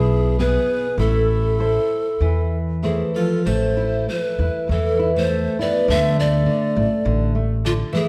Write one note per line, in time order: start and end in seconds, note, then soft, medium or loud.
0.00 0.56 B1 loud
0.00 0.36 B2 medium
0.00 0.38 E4 medium
0.00 0.39 G#4 medium
0.39 0.86 B3 medium
0.39 0.87 E4 soft
0.39 0.95 G#4 medium
0.39 0.87 G#4 medium
0.39 1.01 B4 medium
0.98 1.77 A1 loud
0.98 1.58 A3 medium
0.98 2.82 E4 medium
0.98 2.57 A4 medium
1.59 2.07 E4 soft
1.59 2.08 A4 soft
1.59 2.08 C5 medium
2.21 3.02 E2 medium
2.21 2.81 E3 medium
2.83 3.16 E3 medium
2.83 3.33 A3 soft
2.83 3.33 E4 soft
2.83 3.15 G#4 medium
2.83 3.34 C5 soft
3.14 3.47 F3 medium
3.14 3.46 A4 medium
3.45 4.06 A1 medium
3.45 4.07 A3 medium
3.45 4.10 A3 medium
3.45 4.10 C5 medium
3.77 4.06 E4 soft
4.09 4.69 E3 medium
4.09 4.37 A3 soft
4.09 4.68 B4 medium
4.39 4.48 E2 medium
4.39 4.67 E4 soft
4.68 5.46 E2 medium
4.68 5.11 E3 medium
4.68 4.96 A3 soft
4.68 5.11 A4 medium
4.99 5.27 E4 medium
5.16 5.56 A3 medium
5.16 5.62 C5 medium
5.28 5.57 A3 medium
5.59 5.89 B3 medium
5.59 5.87 E4 medium
5.59 5.89 D5 medium
5.88 6.45 D2 loud
5.88 6.45 D3 medium
5.88 6.16 A3 medium
5.88 6.16 E5 loud
6.16 6.45 A3 medium
6.16 7.31 D5 medium
6.21 7.32 A3 medium
6.46 6.75 D3 medium
6.76 6.86 A1 medium
6.76 7.04 A3 soft
7.05 7.81 A1 loud
7.05 7.33 D3 medium
7.35 7.63 A3 medium
7.65 7.73 D3 medium
7.65 7.93 D3 medium
7.65 7.72 F4 loud
7.93 8.08 E3 loud
7.93 8.08 A3 medium
7.93 8.08 G#4 loud